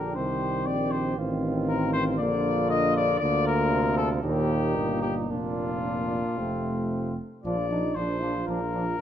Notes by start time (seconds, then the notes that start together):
Already playing: A#1 D3 D4 G4 A#4
0.15 C2 D#3 C4 G4 C5
0.66 A#1 D5
0.91 C5
1.17 A1 D#3 C4 F4
1.69 A#4
1.93 C5
2.19 A#1 D3 A#3 F4 D5
2.70 D#5
2.96 D5
3.20 D2 D3 A#3 F4 D5
3.47 A#4
3.72 C3
3.97 A4
4.23 D#2 A#2 A#3 D#4 G4
4.76 G1
5.02 G4
5.29 F1 A#2 A#3 D4 F4
6.38 F1 C3 A3 C4
7.43 A#1 F3 D4 F4 D5
7.70 F3 D4 D#4
7.95 A#1 F3 D4 C5
8.22 F3 D4 F4
8.47 A#1 F3 D4 A#4
8.74 F3 D4